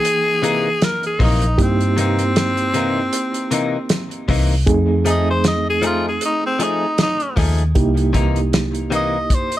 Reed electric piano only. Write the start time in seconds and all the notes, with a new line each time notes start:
Already playing: E3 A#3 D#4 G5
1.58 A#3 D#4 E4 G4
4.66 A3 C4 D#4 G#4
7.75 A#3 D#4 E4 G4